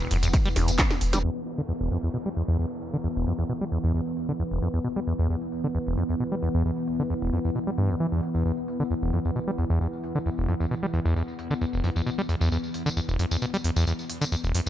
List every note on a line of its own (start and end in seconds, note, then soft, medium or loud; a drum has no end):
0.00 0.09 E1 medium
0.00 0.11 E1 medium
0.00 1.23 E3 medium
0.00 1.23 B3 medium
0.00 ride medium
0.00 tambourine soft
0.11 0.22 E1 loud
0.11 0.17 F2 medium
0.11 open hi-hat medium
0.11 ride medium
0.23 0.33 E1 medium
0.23 0.29 E2 medium
0.23 closed hi-hat medium
0.23 ride medium
0.23 tambourine medium
0.34 0.37 B2 medium
0.34 kick loud
0.34 closed hi-hat medium
0.34 ride medium
0.34 tambourine medium
0.45 0.56 E1 medium
0.45 0.49 G3 loud
0.45 ride medium
0.45 tambourine soft
0.56 0.67 E1 loud
0.56 0.69 E2 medium
0.56 snare medium
0.56 open hi-hat loud
0.56 ride medium
0.68 0.78 E1 medium
0.68 0.71 G2 medium
0.68 closed hi-hat medium
0.68 ride medium
0.68 tambourine medium
0.79 0.83 E2 loud
0.79 kick loud
0.79 snare medium
0.79 clap loud
0.79 closed hi-hat medium
0.79 ride medium
0.91 1.01 E1 medium
0.91 snare medium
0.91 ride medium
0.91 tambourine soft
1.01 1.12 E1 loud
1.01 open hi-hat medium
1.01 ride medium
1.13 1.24 E1 medium
1.13 1.19 G3 medium
1.13 snare medium
1.13 closed hi-hat medium
1.13 ride medium
1.13 tambourine medium
1.24 1.30 E2 medium
1.24 14.69 E3 medium
1.24 14.69 B3 medium
1.24 downlifter medium
1.46 open hi-hat loud
1.58 1.62 D3 loud
1.58 tambourine medium
1.69 1.73 E2 medium
1.69 tambourine soft
1.81 1.89 E1 medium
1.81 tambourine soft
1.91 1.98 F2 medium
1.91 open hi-hat medium
2.03 2.09 E2 medium
2.03 tambourine medium
2.14 2.18 B2 medium
2.14 tambourine medium
2.26 2.29 G3 loud
2.26 tambourine soft
2.36 2.43 E2 medium
2.36 open hi-hat loud
2.48 2.57 E2 loud
2.48 tambourine medium
2.59 2.66 E2 medium
2.59 tambourine soft
2.71 tambourine soft
2.82 open hi-hat medium
2.94 2.97 D3 loud
2.94 tambourine medium
3.04 3.08 E2 medium
3.04 tambourine soft
3.16 3.25 E1 medium
3.16 tambourine soft
3.27 3.33 F2 medium
3.27 open hi-hat loud
3.39 3.44 E2 medium
3.39 tambourine medium
3.49 3.53 B2 medium
3.49 tambourine soft
3.61 3.65 G3 loud
3.61 tambourine soft
3.72 3.78 E2 medium
3.72 open hi-hat medium
3.84 3.93 E2 loud
3.84 tambourine medium
3.94 4.01 E2 medium
3.94 tambourine medium
4.06 tambourine soft
4.17 open hi-hat loud
4.29 4.32 D3 loud
4.29 tambourine medium
4.40 4.43 E2 medium
4.40 tambourine soft
4.51 4.60 E1 medium
4.51 tambourine soft
4.62 4.69 F2 medium
4.62 open hi-hat medium
4.74 4.80 E2 medium
4.74 tambourine medium
4.84 4.88 B2 medium
4.84 tambourine soft
4.96 5.00 G3 loud
4.96 tambourine soft
5.07 5.14 E2 medium
5.07 open hi-hat loud
5.19 5.28 E2 loud
5.19 tambourine medium
5.30 5.36 E2 medium
5.30 tambourine soft
5.42 tambourine soft
5.52 open hi-hat medium
5.64 5.68 D3 loud
5.64 tambourine medium
5.75 5.79 E2 medium
5.75 tambourine medium
5.87 5.96 E1 medium
5.87 tambourine soft
5.97 6.04 F2 medium
5.97 open hi-hat loud
6.09 6.15 E2 medium
6.09 tambourine medium
6.20 6.24 B2 medium
6.20 tambourine soft
6.32 6.35 G3 loud
6.32 tambourine soft
6.43 6.49 E2 medium
6.43 open hi-hat medium
6.54 6.63 E2 loud
6.54 tambourine medium
6.65 6.72 E2 medium
6.65 tambourine medium
6.77 tambourine soft
6.88 open hi-hat loud
7.00 7.03 D3 loud
7.00 tambourine medium
7.10 7.14 E2 medium
7.10 tambourine medium
7.22 7.31 E1 medium
7.22 tambourine soft
7.33 7.39 F2 medium
7.33 open hi-hat medium
7.45 7.51 E2 medium
7.45 tambourine medium
7.55 7.59 B2 medium
7.55 tambourine medium
7.67 7.71 G3 loud
7.67 tambourine soft
7.78 7.91 G2 loud
7.78 open hi-hat loud
7.90 7.96 E2 medium
7.90 tambourine medium
8.00 8.07 E3 loud
8.00 tambourine medium
8.12 8.21 E2 medium
8.12 tambourine soft
8.23 open hi-hat medium
8.35 8.44 E2 medium
8.35 tambourine medium
8.45 8.52 E2 medium
8.45 tambourine medium
8.58 tambourine soft
8.68 open hi-hat loud
8.80 8.83 D3 loud
8.80 tambourine medium
8.91 8.95 E2 medium
8.91 tambourine medium
9.02 9.11 E1 medium
9.02 tambourine soft
9.13 9.20 F2 medium
9.13 open hi-hat medium
9.25 9.31 E2 medium
9.25 tambourine medium
9.36 9.40 B2 medium
9.36 tambourine medium
9.48 9.51 G3 loud
9.48 tambourine soft
9.58 9.65 E2 medium
9.58 open hi-hat loud
9.70 9.79 E2 loud
9.70 tambourine medium
9.81 9.87 E2 medium
9.81 tambourine medium
9.93 tambourine soft
10.04 open hi-hat medium
10.15 10.19 D3 loud
10.15 tambourine medium
10.26 10.30 E2 medium
10.26 tambourine medium
10.38 10.47 E1 medium
10.38 tambourine soft
10.48 10.55 F2 medium
10.48 open hi-hat loud
10.60 10.66 E2 medium
10.60 tambourine medium
10.71 10.75 B2 medium
10.71 tambourine medium
10.83 10.86 G3 loud
10.83 tambourine soft
10.94 11.00 E2 medium
10.94 open hi-hat medium
11.05 11.14 E2 loud
11.05 tambourine medium
11.16 11.23 E2 medium
11.16 tambourine medium
11.28 tambourine soft
11.39 open hi-hat loud
11.51 11.54 D3 loud
11.51 tambourine medium
11.61 11.65 E2 medium
11.61 tambourine medium
11.73 11.82 E1 medium
11.73 tambourine soft
11.84 11.90 F2 medium
11.84 open hi-hat medium
11.96 12.02 E2 medium
11.96 tambourine medium
12.06 12.10 B2 medium
12.06 tambourine medium
12.18 12.22 G3 loud
12.18 tambourine soft
12.29 12.36 E2 medium
12.29 open hi-hat loud
12.41 12.50 E2 loud
12.41 tambourine medium
12.52 12.58 E2 medium
12.52 tambourine medium
12.64 tambourine soft
12.74 open hi-hat medium
12.86 12.89 D3 loud
12.86 tambourine medium
12.97 13.01 E2 medium
12.97 tambourine medium
13.09 13.17 E1 medium
13.09 tambourine soft
13.19 13.26 F2 medium
13.19 open hi-hat loud
13.31 13.37 E2 medium
13.31 tambourine medium
13.42 13.46 B2 medium
13.42 tambourine medium
13.54 13.57 G3 loud
13.54 tambourine soft
13.64 13.71 E2 medium
13.64 open hi-hat medium
13.76 13.85 E2 loud
13.76 tambourine medium
13.87 13.93 E2 medium
13.87 tambourine medium
13.99 tambourine soft
14.10 open hi-hat loud
14.21 14.25 D3 loud
14.21 tambourine medium
14.32 14.36 E2 medium
14.32 tambourine soft
14.44 14.53 E1 medium
14.44 tambourine soft
14.54 14.61 F2 medium
14.54 open hi-hat medium